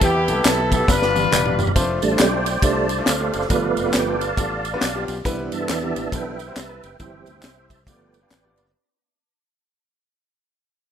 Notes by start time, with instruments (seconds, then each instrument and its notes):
Already playing: tonewheel organ G4 E5 B5
0.01 fingered electric bass E2, grand piano E3 B3 E4 G4, horn section B3 E4 G4, tonewheel organ B4, kick, ride, tambourine
0.28 fingered electric bass C2, grand piano B3 E4 A4, ride, tambourine
0.45 fingered electric bass B1, horn section A4, snare, clap, ride, tambourine
0.72 grand piano B3 E4 G4, horn section A4, kick, ride, tambourine
0.88 fingered electric bass G1, grand piano G2, horn section D4 F4 B4, tonewheel organ D5 F5, kick, snare, tambourine
1.02 grand piano G3 B3 D4 F4 B4, snare
1.16 high tom, tambourine
1.24 high tom
1.32 fingered electric bass E1, grand piano G3 B3 D4 F4 D5, clap, mid tom, tambourine
1.46 mid tom
1.59 floor tom, tambourine
1.67 floor tom
1.76 fingered electric bass F1, grand piano A3 C4 D4 F4 C5, kick, ride, tambourine
2.01 fingered electric bass A1, tonewheel organ G3 A3 D4 A5, ride, tambourine
2.11 grand piano A3 C4 D4 F4 C5
2.19 fingered electric bass B1, tonewheel organ C5 D5 G5, snare, clap, ride, tambourine
2.33 grand piano A3 C4 D4 F4 C5
2.46 ride, tambourine
2.62 fingered electric bass C2, tonewheel organ G3 A3 D4 C5 D5 A5, grand piano A3 C4 D4 F4 C5, kick, ride, tambourine
2.89 ride, tambourine
2.99 grand piano A3 C4 D4 F4 C5
3.06 fingered electric bass D2, tonewheel organ A4 D5 F5, snare, clap, ride, tambourine
3.20 grand piano A3 C4 D4 F4 G4
3.33 fingered electric bass F#1, ride, tambourine
3.41 snare
3.49 fingered electric bass G1, grand piano G2 G3 B3 D4 F4 B4, tonewheel organ F3 A3 B3 B4 D5 F5, kick, ride, tambourine
3.77 fingered electric bass F1, ride, tambourine
3.86 grand piano G3 B3 D4 F4 B4
3.93 fingered electric bass G1, tonewheel organ G5, snare, clap, ride, tambourine
4.07 grand piano G3 B3 D4 F4 A4
4.20 tonewheel organ D5 F5 A5, ride, tambourine
4.37 fingered electric bass A1, grand piano G3 B3 D4 F4 A4, kick, ride, tambourine
4.65 ride, tambourine
4.74 grand piano G3 B3 D4 F4 B4
4.81 fingered electric bass B1, snare, clap, ride, tambourine
4.95 grand piano G3 B3 D4 F4 G4
5.08 fingered electric bass B1, ride, tambourine
5.25 fingered electric bass C2, grand piano C3 G3 B3 C4 E4 B4, tonewheel organ E3 B3 D4, kick, ride, tambourine
5.52 fingered electric bass G2, tonewheel organ E5 A5, ride, tambourine
5.60 grand piano G3 B3 C4 E4 A4
5.69 fingered electric bass E2, snare, clap, ride, tambourine
5.82 grand piano G3 B3 C4 E4 G4
5.96 fingered electric bass A1, ride, tambourine
6.12 fingered electric bass B1, tonewheel organ E3 B3 D4 B4 E5 G5, grand piano G3 B3 C4 E4 A4, kick, ride, tambourine
6.39 ride, tambourine
6.47 grand piano G3 B3 C4 E4 C5
6.56 fingered electric bass C2, tonewheel organ A5, snare, clap, ride, tambourine
6.69 grand piano G3 B3 C4 E4 B4
6.83 fingered electric bass F#1, tonewheel organ G5, ride, tambourine
6.99 fingered electric bass G1, grand piano G2 E4 G4 C5, tonewheel organ E3 G3 C4 C5 E5 G5, kick, ride, tambourine
7.26 fingered electric bass D2, ride, tambourine
7.35 grand piano E4 G4 C5
7.42 fingered electric bass C2, snare, clap, ride, tambourine
7.57 grand piano E4 G4 C5
7.70 tonewheel organ A5, kick, ride, tambourine
7.87 fingered electric bass G1, grand piano G2 B3 D4 F4 G4 D5, tonewheel organ F3 A3 B3 B4 D5 G5, kick, ride, tambourine
8.14 ride, tambourine
8.23 grand piano B3 D4 F4 G4 F5
8.31 fingered electric bass A1, snare, clap, ride, tambourine
8.45 grand piano B3 D4 F4 G4 D5
8.57 fingered electric bass F#1, ride, tambourine
8.66 snare